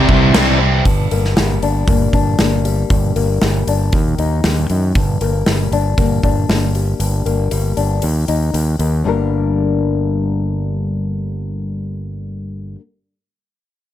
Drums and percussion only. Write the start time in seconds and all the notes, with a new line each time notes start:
0.09 kick
0.34 snare, crash
0.85 kick, open hi-hat
1.11 open hi-hat
1.24 snare
1.37 snare, open hi-hat
1.63 open hi-hat
1.88 kick, open hi-hat
2.13 kick, open hi-hat
2.39 snare, open hi-hat
2.65 open hi-hat
2.90 kick, open hi-hat
3.16 open hi-hat
3.42 snare, open hi-hat
3.68 open hi-hat
3.92 kick, open hi-hat
4.18 open hi-hat
4.44 snare, open hi-hat
4.70 open hi-hat
4.95 kick, open hi-hat
5.21 open hi-hat
5.46 snare, open hi-hat
5.72 open hi-hat
5.98 kick, open hi-hat
6.23 kick, open hi-hat
6.49 snare, open hi-hat
6.75 open hi-hat
7.00 open hi-hat
7.26 open hi-hat
7.51 open hi-hat
7.77 open hi-hat
8.02 open hi-hat
8.28 open hi-hat
8.54 open hi-hat
8.80 open hi-hat